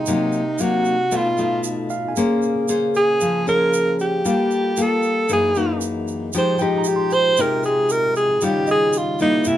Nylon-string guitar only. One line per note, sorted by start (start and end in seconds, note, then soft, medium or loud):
0.08 1.09 C3 medium
0.08 0.41 F#3 medium
0.08 0.41 A#3 medium
0.08 0.41 D#4 medium
0.60 0.94 F#3 medium
0.60 0.95 A#3 medium
0.60 0.95 D#4 medium
1.12 2.13 B2 medium
1.12 1.27 A3 medium
1.12 1.27 D#4 medium
1.12 1.27 F4 medium
1.38 2.12 A3 medium
1.38 2.12 D#4 medium
1.38 2.12 F4 medium
2.17 3.18 A#3 medium
2.17 2.64 C#4 medium
2.17 2.64 G#4 medium
2.17 2.65 C5 medium
2.69 3.20 C#4 medium
2.69 3.20 G#4 medium
2.69 3.21 C5 medium
3.21 4.22 F3 medium
3.47 4.20 C#4 medium
3.47 4.21 G#4 medium
3.47 4.21 C5 medium
4.25 5.26 G3 medium
4.25 4.73 A#3 medium
4.25 4.73 F4 medium
4.25 4.73 A4 medium
4.77 5.27 A#3 medium
4.77 5.27 F4 medium
4.77 5.27 A4 medium
5.29 6.30 F#2 medium
5.29 5.51 E3 medium
5.29 5.51 A#3 medium
5.29 5.51 D#4 medium
5.56 6.29 E3 medium
5.56 6.29 A#3 medium
5.56 6.30 D#4 medium
6.34 7.35 F3 medium
6.34 6.56 G#3 medium
6.34 6.56 D#4 medium
6.34 6.56 G4 medium
6.61 7.34 G#3 medium
6.61 7.34 D#4 medium
6.61 7.34 G4 medium
7.38 8.39 C3 medium
7.38 8.38 G#3 medium
7.38 8.38 D#4 medium
7.38 8.38 G4 medium
8.42 9.43 D#3 medium
8.42 9.16 G3 medium
8.42 9.16 C#4 medium
8.42 9.16 F4 medium
9.20 9.57 G3 medium
9.20 9.57 A#3 medium
9.20 9.57 E4 medium
9.46 9.57 C3 medium